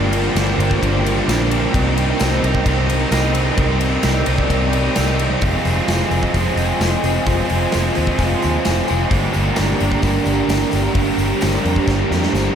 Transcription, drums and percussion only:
0.13 ride
0.36 snare, ride, tambourine
0.60 ride
0.71 kick
0.83 kick, ride
1.06 ride
1.29 snare, ride, tambourine
1.51 ride
1.74 kick, ride
1.98 ride
2.19 snare, ride, tambourine
2.44 ride
2.55 kick
2.66 kick, ride
2.90 ride
3.12 snare, ride, tambourine
3.35 ride
3.58 kick, ride
3.81 ride
4.03 snare, ride, tambourine
4.26 ride
4.38 kick
4.50 kick, ride
4.73 ride
4.96 snare, ride, tambourine
5.19 ride
5.42 kick, open hi-hat
5.65 open hi-hat, tambourine
5.88 snare, open hi-hat, tambourine
6.11 open hi-hat, tambourine
6.23 kick
6.34 kick, open hi-hat, tambourine
6.57 open hi-hat, tambourine
6.81 snare, open hi-hat, tambourine
7.04 open hi-hat, tambourine
7.27 kick, open hi-hat
7.50 open hi-hat
7.72 snare, open hi-hat, tambourine
7.95 open hi-hat, tambourine
8.07 kick
8.19 kick, open hi-hat, tambourine
8.42 open hi-hat, tambourine
8.65 snare, open hi-hat, tambourine
8.88 open hi-hat, tambourine
9.11 kick, open hi-hat
9.33 open hi-hat, tambourine
9.56 snare, open hi-hat, tambourine
9.80 open hi-hat, tambourine
9.92 kick
10.02 kick, open hi-hat, tambourine
10.25 open hi-hat, tambourine
10.49 snare, open hi-hat, tambourine
10.71 open hi-hat, tambourine
10.95 kick, open hi-hat
11.18 open hi-hat, tambourine
11.41 snare, open hi-hat, tambourine
11.63 open hi-hat, tambourine
11.76 kick
11.87 kick, snare, tambourine
12.12 snare, tambourine
12.23 snare
12.35 snare, tambourine

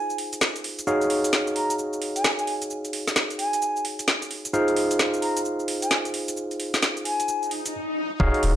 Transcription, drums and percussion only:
0.10 cabasa
0.18 open hi-hat
0.33 closed hi-hat, cabasa
0.41 snare, cabasa
0.56 closed hi-hat, cabasa
0.64 open hi-hat
0.79 closed hi-hat, cabasa
0.87 cabasa
1.01 closed hi-hat, cabasa
1.10 open hi-hat
1.24 closed hi-hat, cabasa
1.33 snare, cabasa
1.47 closed hi-hat, cabasa
1.56 open hi-hat
1.70 closed hi-hat, cabasa
1.79 cabasa
1.93 cabasa
2.02 open hi-hat
2.16 closed hi-hat, cabasa
2.24 snare, cabasa
2.39 closed hi-hat, cabasa
2.47 open hi-hat
2.62 closed hi-hat, cabasa
2.70 cabasa
2.85 closed hi-hat, cabasa
2.93 open hi-hat
3.08 snare, closed hi-hat, cabasa
3.16 snare, cabasa
3.30 closed hi-hat, cabasa
3.39 open hi-hat
3.53 closed hi-hat, cabasa
3.62 cabasa
3.76 cabasa
3.85 open hi-hat
3.99 closed hi-hat, cabasa
4.08 snare, cabasa
4.22 closed hi-hat, cabasa
4.31 open hi-hat
4.45 closed hi-hat, cabasa
4.54 cabasa
4.68 closed hi-hat, cabasa
4.76 open hi-hat
4.91 closed hi-hat, cabasa
4.99 snare, cabasa
5.14 closed hi-hat, cabasa
5.22 open hi-hat
5.37 closed hi-hat, cabasa
5.45 cabasa
5.60 cabasa
5.68 open hi-hat
5.82 closed hi-hat, cabasa
5.91 snare, cabasa
6.05 closed hi-hat, cabasa
6.14 open hi-hat
6.28 closed hi-hat, cabasa
6.37 cabasa
6.51 closed hi-hat, cabasa
6.60 open hi-hat
6.74 snare, closed hi-hat, cabasa
6.83 snare, cabasa
6.97 closed hi-hat, cabasa
7.05 open hi-hat
7.20 closed hi-hat, cabasa
7.28 cabasa
7.43 cabasa
7.51 open hi-hat
7.66 closed hi-hat, cabasa
8.20 kick
8.34 closed hi-hat
8.43 open hi-hat

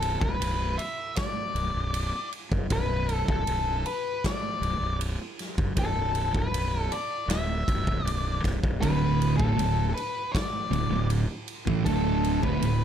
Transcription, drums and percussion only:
0.02 ride
0.21 kick
0.42 ride
0.79 ride
1.16 kick, snare, ride
1.56 ride
1.94 ride
2.32 ride
2.52 kick
2.70 kick, ride
3.09 ride
3.28 kick
3.47 ride
3.86 ride
4.24 kick, snare, ride
4.63 ride
5.01 ride
5.39 snare, ride
5.58 kick
5.77 kick, ride
6.15 ride
6.34 kick
6.54 ride
6.92 ride
7.30 snare, ride
7.68 kick, ride
7.87 kick
8.07 ride
8.44 kick, snare, ride
8.64 kick
8.83 kick, ride
9.22 ride
9.40 kick
9.59 ride
9.97 ride
10.35 kick, snare, ride
10.73 ride
11.10 ride
11.48 ride
11.67 kick
11.86 kick, ride
12.24 ride
12.43 kick
12.62 ride

